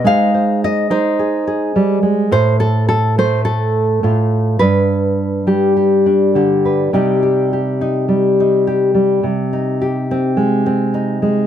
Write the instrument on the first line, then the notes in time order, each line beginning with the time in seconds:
nylon-string guitar
0.04 G#3 D#4 G#4 C5 F5
0.34 C5
0.64 D#5
0.90 D#4 C5
1.19 G#4
1.47 G#4
1.76 G3
2.03 G#3
2.31 A2 C5
2.60 A4
2.89 A4
3.18 A3 C5
3.45 A4
4.03 A2 F4
4.59 G2 B4
5.47 G3 G4
5.77 G4
6.06 D4
6.35 D3 G4
6.65 B4
6.93 C3 G3 D#4 G4
7.23 G4
7.53 G4
7.81 D#4
8.08 G3
8.40 D#4
8.67 G4
8.94 G3
9.23 C3
9.53 D#4
9.82 G4
10.11 C4
10.37 G#3
10.66 C4
10.94 D#4
11.22 G#3